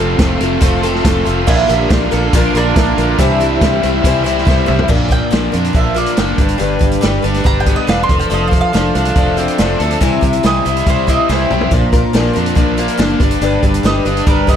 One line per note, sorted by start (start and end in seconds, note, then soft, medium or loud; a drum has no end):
0.00 0.18 F1 loud
0.00 0.16 F2 loud
0.00 0.17 C3 loud
0.00 0.19 F3 medium
0.00 0.18 A3 medium
0.00 1.44 C4 medium
0.00 0.19 C4 medium
0.00 0.20 F4 medium
0.00 1.44 F4 medium
0.00 0.19 A4 medium
0.00 1.44 A4 medium
0.18 0.40 F1 loud
0.18 0.61 F2 medium
0.18 0.62 C3 loud
0.18 0.42 F3 loud
0.18 0.41 A3 medium
0.18 0.41 C4 medium
0.18 kick loud
0.18 snare loud
0.18 closed hi-hat medium
0.22 0.42 F4 medium
0.22 0.40 A4 medium
0.40 0.61 F1 medium
0.40 0.59 F3 medium
0.40 0.60 A3 medium
0.40 0.61 C4 soft
0.40 0.61 F4 medium
0.40 0.62 A4 medium
0.40 closed hi-hat medium
0.61 1.03 F1 medium
0.61 0.83 F3 medium
0.61 0.83 A3 medium
0.61 0.84 C4 medium
0.61 0.84 F4 loud
0.61 0.82 A4 medium
0.61 kick loud
0.61 closed hi-hat loud
0.83 1.27 F2 medium
0.83 1.27 C3 medium
0.83 1.03 F3 medium
0.83 1.03 A3 medium
0.83 1.05 C4 medium
0.83 1.06 F4 medium
0.83 1.05 A4 medium
0.83 closed hi-hat medium
0.95 snare soft
1.04 1.26 F1 medium
1.04 1.26 F3 medium
1.04 1.26 A3 medium
1.04 1.27 C4 medium
1.04 1.26 F4 medium
1.04 1.24 A4 medium
1.04 kick loud
1.04 snare loud
1.04 closed hi-hat loud
1.25 1.47 F1 medium
1.25 1.47 F3 medium
1.25 1.47 A3 medium
1.25 1.48 C4 medium
1.25 1.47 F4 medium
1.25 1.47 A4 medium
1.25 closed hi-hat medium
1.47 1.68 A#1 loud
1.47 1.69 A#2 medium
1.47 1.89 D3 loud
1.47 1.69 F3 medium
1.47 1.69 A#3 medium
1.47 1.69 D4 medium
1.47 3.18 D4 medium
1.47 1.69 E4 loud
1.47 3.17 F4 medium
1.47 1.69 F4 medium
1.47 2.73 A#4 medium
1.47 3.17 A#4 medium
1.47 1.67 A#4 medium
1.47 2.73 D5 medium
1.47 2.73 F5 medium
1.47 kick loud
1.47 crash loud
1.69 1.90 A#1 medium
1.69 1.89 A#3 medium
1.69 1.90 D4 soft
1.69 1.91 F4 medium
1.69 2.11 G4 medium
1.69 1.90 A#4 medium
1.69 closed hi-hat medium
1.89 2.11 A#1 loud
1.89 2.32 A#2 medium
1.89 2.31 D3 loud
1.89 2.11 A#3 medium
1.89 2.12 D4 medium
1.89 2.11 F4 medium
1.89 kick loud
1.89 snare loud
1.89 closed hi-hat medium
1.94 2.10 A#4 medium
2.11 2.33 A#1 medium
2.11 2.33 A#3 medium
2.11 2.34 D4 medium
2.11 2.33 F4 medium
2.11 2.33 A4 medium
2.11 2.33 A#4 medium
2.11 closed hi-hat medium
2.32 2.54 A#1 medium
2.32 2.55 A#2 medium
2.32 2.54 D3 medium
2.32 2.55 F3 loud
2.32 2.55 A#3 medium
2.32 2.55 D4 medium
2.32 2.54 F4 medium
2.32 2.54 A#4 loud
2.32 kick loud
2.32 closed hi-hat loud
2.54 2.75 A#1 medium
2.54 2.98 A#2 medium
2.54 2.74 D3 medium
2.54 2.75 A#3 medium
2.54 3.80 D4 medium
2.54 2.76 D4 medium
2.54 2.76 F4 medium
2.54 2.76 A#4 medium
2.54 3.18 A#4 medium
2.54 closed hi-hat medium
2.75 2.97 A#1 medium
2.75 3.17 D3 medium
2.75 2.97 A#3 medium
2.75 2.98 D4 medium
2.75 2.98 F4 medium
2.75 3.19 A#4 medium
2.75 3.19 D5 medium
2.75 3.17 E5 medium
2.75 kick loud
2.75 snare loud
2.75 closed hi-hat medium
2.80 2.97 A#4 medium
2.97 3.18 A#1 medium
2.97 3.20 D4 medium
2.97 3.20 F4 medium
2.97 3.19 A#4 medium
2.97 closed hi-hat medium
3.02 3.19 A#3 soft
3.18 3.60 C2 medium
3.18 3.40 C3 medium
3.18 3.40 E3 medium
3.18 3.40 G3 medium
3.18 3.41 C4 loud
3.18 3.40 E4 medium
3.18 4.89 E4 medium
3.18 4.65 G4 medium
3.18 4.89 G4 medium
3.18 4.65 C5 medium
3.18 4.89 C5 medium
3.18 3.39 C5 loud
3.18 4.65 E5 medium
3.18 kick loud
3.18 closed hi-hat medium
3.40 3.60 G3 soft
3.40 3.61 C4 medium
3.40 3.62 E4 medium
3.40 3.61 C5 medium
3.40 closed hi-hat medium
3.61 3.82 C2 loud
3.61 4.04 C3 medium
3.61 4.01 E3 medium
3.61 3.83 G3 medium
3.61 3.83 C4 medium
3.61 3.84 E4 medium
3.61 3.82 C5 medium
3.61 kick loud
3.61 snare loud
3.61 closed hi-hat medium
3.83 4.04 C2 medium
3.83 4.04 G3 medium
3.83 4.05 C4 medium
3.83 4.05 E4 medium
3.83 4.04 C5 medium
3.83 closed hi-hat medium
4.04 4.46 C2 medium
4.04 4.26 C3 medium
4.04 4.26 E3 medium
4.04 4.26 G3 medium
4.04 4.25 C4 medium
4.04 4.25 E4 loud
4.04 4.23 C5 medium
4.04 kick loud
4.04 closed hi-hat loud
4.24 4.69 C3 medium
4.24 4.45 E3 medium
4.24 4.44 G3 medium
4.24 4.46 C4 medium
4.24 4.46 E4 medium
4.24 4.46 C5 medium
4.24 closed hi-hat medium
4.38 snare soft
4.45 4.68 C2 medium
4.45 4.88 E3 medium
4.45 4.67 G3 medium
4.45 4.67 C4 medium
4.45 4.66 E4 medium
4.45 4.65 C5 medium
4.45 kick loud
4.45 snare medium
4.66 4.89 C2 medium
4.66 4.88 G3 soft
4.66 4.89 C4 medium
4.66 4.89 E4 medium
4.66 4.89 G4 medium
4.66 4.88 C5 medium
4.66 4.89 C5 medium
4.66 4.89 E5 medium
4.66 mid tom loud
4.79 floor tom loud
4.88 5.20 A#1 loud
4.88 5.10 A#2 medium
4.88 5.10 F3 medium
4.88 5.11 A#3 medium
4.88 5.10 D4 medium
4.88 6.37 F4 medium
4.88 5.09 F4 medium
4.88 6.38 A#4 medium
4.88 5.07 A#4 medium
4.88 6.38 D5 medium
4.88 kick loud
4.88 crash medium
5.09 5.31 A#3 soft
5.09 5.31 D4 soft
5.09 5.31 F4 soft
5.09 5.31 A#4 medium
5.09 5.74 G5 loud
5.09 kick medium
5.09 closed hi-hat medium
5.31 5.48 A#1 medium
5.31 5.53 A#2 medium
5.31 5.53 F3 medium
5.31 5.53 A#3 medium
5.31 5.54 D4 medium
5.31 5.52 F4 medium
5.31 5.51 A#4 medium
5.31 snare loud
5.31 closed hi-hat medium
5.52 5.69 F2 medium
5.52 5.72 A#3 soft
5.52 5.73 D4 soft
5.52 5.74 F4 medium
5.52 5.74 A#4 medium
5.52 closed hi-hat medium
5.64 closed hi-hat medium
5.73 6.06 A#1 medium
5.73 6.39 F3 medium
5.73 5.95 A#3 medium
5.73 5.95 D4 medium
5.73 5.94 F4 medium
5.73 5.93 A#4 medium
5.73 5.96 E5 medium
5.73 kick loud
5.73 closed hi-hat medium
5.95 6.17 A#3 soft
5.95 6.17 D4 soft
5.95 6.17 F4 medium
5.95 6.17 A#4 medium
5.95 6.18 D5 medium
5.95 closed hi-hat medium
6.06 closed hi-hat medium
6.17 6.33 F#1 medium
6.17 6.39 A#2 medium
6.17 6.39 F3 medium
6.17 6.39 A#3 medium
6.17 6.39 D4 medium
6.17 6.39 F4 medium
6.17 6.38 A#4 medium
6.17 6.60 G5 medium
6.17 snare loud
6.17 closed hi-hat medium
6.38 6.54 G1 medium
6.38 6.58 G2 medium
6.38 6.58 D4 soft
6.38 8.08 G4 medium
6.38 6.59 G4 soft
6.38 6.60 B4 medium
6.38 8.08 B4 medium
6.38 8.07 D5 medium
6.38 kick loud
6.38 closed hi-hat medium
6.48 closed hi-hat medium
6.58 6.76 G1 medium
6.58 7.67 G2 medium
6.58 6.81 G3 medium
6.58 6.81 D4 medium
6.58 6.80 G4 medium
6.58 6.78 B4 medium
6.58 closed hi-hat medium
6.79 6.97 G1 medium
6.79 7.01 D4 medium
6.79 7.01 G4 medium
6.79 7.02 B4 medium
6.79 kick medium
6.79 closed hi-hat medium
6.91 closed hi-hat medium
7.01 7.19 G1 medium
7.01 7.23 G3 medium
7.01 7.24 D4 medium
7.01 7.23 G4 medium
7.01 7.21 B4 medium
7.01 snare loud
7.01 closed hi-hat medium
7.22 7.40 G1 medium
7.22 7.44 D4 soft
7.22 7.45 G4 medium
7.22 7.45 B4 medium
7.22 closed hi-hat medium
7.34 snare soft
7.34 closed hi-hat medium
7.44 7.77 G1 medium
7.44 7.66 G3 medium
7.44 7.67 D4 medium
7.44 7.67 G4 medium
7.44 7.65 B4 medium
7.44 7.60 A#5 medium
7.44 kick loud
7.44 closed hi-hat medium
7.60 7.74 G5 medium
7.66 8.10 B3 medium
7.66 7.87 D4 soft
7.66 7.87 G4 medium
7.66 7.88 B4 medium
7.66 kick medium
7.66 closed hi-hat medium
7.76 7.89 D#5 medium
7.87 8.04 E1 medium
7.87 8.09 G3 medium
7.87 8.10 D4 medium
7.87 8.10 G4 medium
7.87 8.09 B4 medium
7.87 8.03 F5 loud
7.87 snare loud
7.87 closed hi-hat medium
8.03 8.17 C6 loud
8.09 8.25 F1 medium
8.09 8.30 F3 medium
8.09 8.30 D4 soft
8.09 10.00 F4 medium
8.09 8.30 A4 soft
8.09 8.31 C5 medium
8.09 kick loud
8.09 closed hi-hat medium
8.19 8.32 G5 medium
8.19 closed hi-hat medium
8.30 8.62 F1 loud
8.30 8.52 F3 medium
8.30 8.52 A3 medium
8.30 8.52 D4 medium
8.30 8.52 A4 medium
8.30 8.50 C5 medium
8.30 8.46 D#5 medium
8.30 closed hi-hat medium
8.47 8.73 C5 medium
8.47 8.60 F5 medium
8.52 8.73 D4 soft
8.52 8.74 A4 soft
8.52 kick medium
8.52 closed hi-hat medium
8.61 9.84 F5 medium
8.73 8.90 F1 medium
8.73 8.95 F3 medium
8.73 8.95 A3 medium
8.73 8.95 D4 medium
8.73 8.96 A4 medium
8.73 8.94 C5 medium
8.73 snare loud
8.73 closed hi-hat medium
8.95 9.11 C2 medium
8.95 9.16 D4 soft
8.95 9.17 A4 soft
8.95 9.16 C5 medium
8.95 closed hi-hat medium
9.05 closed hi-hat medium
9.15 9.47 F1 medium
9.15 10.02 F3 medium
9.15 9.38 A3 medium
9.15 9.38 D4 medium
9.15 9.37 A4 medium
9.15 9.36 C5 medium
9.15 kick loud
9.15 closed hi-hat medium
9.37 10.02 C4 medium
9.37 9.59 D4 medium
9.37 9.59 A4 medium
9.37 9.59 C5 medium
9.37 closed hi-hat medium
9.48 closed hi-hat medium
9.58 9.75 F1 loud
9.58 9.80 F3 medium
9.58 9.81 A3 medium
9.58 9.81 D4 medium
9.58 9.81 A4 loud
9.58 9.79 C5 loud
9.58 snare loud
9.58 closed hi-hat medium
9.80 9.96 D2 medium
9.80 10.02 D4 soft
9.80 10.02 A4 medium
9.80 10.02 C5 medium
9.80 closed hi-hat medium
9.91 closed hi-hat medium
10.01 10.17 C2 loud
10.01 10.22 C3 medium
10.01 10.23 E3 medium
10.01 10.23 G3 medium
10.01 10.23 C4 loud
10.01 10.22 E4 medium
10.01 11.71 E4 medium
10.01 11.71 G4 medium
10.01 11.71 C5 medium
10.01 10.20 C5 medium
10.01 kick loud
10.01 closed hi-hat medium
10.21 10.38 C2 medium
10.21 10.43 G3 soft
10.21 10.44 C4 medium
10.21 10.44 E4 medium
10.21 10.43 C5 medium
10.21 kick medium
10.21 closed hi-hat medium
10.33 closed hi-hat medium
10.43 10.60 C2 loud
10.43 10.65 C3 medium
10.43 10.65 E3 medium
10.43 10.66 G3 medium
10.43 10.66 C4 medium
10.43 10.65 E4 medium
10.43 10.64 C5 medium
10.43 10.87 D#5 medium
10.43 snare loud
10.43 closed hi-hat medium
10.65 10.81 C2 medium
10.65 10.85 G3 soft
10.65 10.86 C4 soft
10.65 10.87 E4 soft
10.65 10.87 C5 medium
10.65 closed hi-hat medium
10.76 closed hi-hat medium
10.86 11.18 C2 medium
10.86 11.08 G3 medium
10.86 11.08 C4 medium
10.86 11.07 E4 medium
10.86 11.09 C5 medium
10.86 11.06 C5 medium
10.86 kick loud
10.86 closed hi-hat medium
11.07 11.28 G3 soft
11.07 11.29 C4 soft
11.07 11.30 E4 medium
11.07 11.29 C5 medium
11.07 11.30 D#5 loud
11.07 kick medium
11.07 closed hi-hat medium
11.29 11.45 C2 medium
11.29 11.51 C3 medium
11.29 11.51 E3 medium
11.29 11.51 G3 medium
11.29 11.51 C4 medium
11.29 11.51 E4 medium
11.29 12.53 C5 medium
11.29 11.49 C5 medium
11.29 snare medium
11.50 11.66 B1 medium
11.50 11.72 G3 soft
11.50 11.72 C4 soft
11.50 11.72 E4 medium
11.50 11.72 G4 medium
11.50 11.72 C5 medium
11.50 mid tom medium
11.61 floor tom medium
11.71 12.03 A#1 loud
11.71 11.93 A#2 medium
11.71 11.93 F3 medium
11.71 11.93 A#3 medium
11.71 11.93 D4 medium
11.71 13.20 D4 medium
11.71 11.92 F4 medium
11.71 13.20 F4 medium
11.71 11.91 A#4 medium
11.71 13.20 A#4 medium
11.71 kick loud
11.71 closed hi-hat medium
11.92 12.13 A#3 medium
11.92 12.14 D4 medium
11.92 12.14 F4 medium
11.92 12.14 A#4 medium
11.92 kick medium
11.92 closed hi-hat medium
12.13 12.30 A#1 medium
12.13 12.35 A#2 medium
12.13 12.35 F3 medium
12.13 12.35 A#3 medium
12.13 12.35 D4 medium
12.13 12.34 F4 medium
12.13 12.32 A#4 medium
12.13 snare loud
12.13 closed hi-hat medium
12.34 12.52 F2 medium
12.34 12.54 A#3 soft
12.34 12.55 D4 soft
12.34 12.56 F4 medium
12.34 12.56 A#4 medium
12.34 closed hi-hat medium
12.46 closed hi-hat medium
12.55 12.88 A#1 medium
12.55 13.21 F3 medium
12.55 12.77 A#3 medium
12.55 12.78 D4 medium
12.55 12.77 F4 medium
12.55 12.76 A#4 medium
12.55 kick loud
12.55 closed hi-hat medium
12.77 12.98 A#3 medium
12.77 12.98 D4 medium
12.77 12.98 F4 medium
12.77 12.99 A#4 medium
12.77 closed hi-hat medium
12.88 closed hi-hat medium
12.97 13.15 F#1 loud
12.97 13.20 A#2 medium
12.97 13.20 F3 medium
12.97 13.20 A#3 medium
12.97 13.21 D4 loud
12.97 13.21 F4 loud
12.97 13.19 A#4 loud
12.97 snare loud
12.97 closed hi-hat medium
13.19 13.36 G1 loud
13.19 13.41 G2 medium
13.19 14.56 D3 medium
13.19 13.41 D4 medium
13.19 14.56 G4 medium
13.19 13.42 G4 medium
13.19 13.41 B4 medium
13.19 14.56 B4 medium
13.19 kick loud
13.19 closed hi-hat medium
13.31 closed hi-hat medium
13.41 13.57 G1 loud
13.41 14.48 G2 medium
13.41 13.63 G3 medium
13.41 13.63 D4 medium
13.41 13.63 G4 medium
13.41 13.61 B4 medium
13.41 closed hi-hat medium
13.63 13.79 G1 medium
13.63 13.83 D4 soft
13.63 13.84 G4 medium
13.63 13.84 B4 medium
13.63 kick medium
13.63 closed hi-hat medium
13.74 closed hi-hat medium
13.83 13.99 G1 medium
13.83 14.05 G3 medium
13.83 14.06 D4 medium
13.83 14.05 G4 medium
13.83 14.04 B4 medium
13.83 14.26 D#5 loud
13.83 snare loud
13.83 closed hi-hat medium
14.05 14.21 G1 medium
14.05 14.26 D4 soft
14.05 14.27 G4 soft
14.05 14.27 B4 medium
14.05 closed hi-hat medium
14.17 closed hi-hat medium
14.27 14.56 G1 medium
14.27 14.48 G3 medium
14.27 14.49 D4 medium
14.27 14.48 G4 medium
14.27 14.47 A#4 loud
14.27 14.46 B4 medium
14.27 kick loud
14.27 closed hi-hat medium
14.47 14.56 B3 medium
14.47 14.56 D4 soft
14.47 14.56 G4 medium
14.47 14.56 B4 medium
14.47 14.56 D#5 medium
14.47 kick medium
14.47 closed hi-hat medium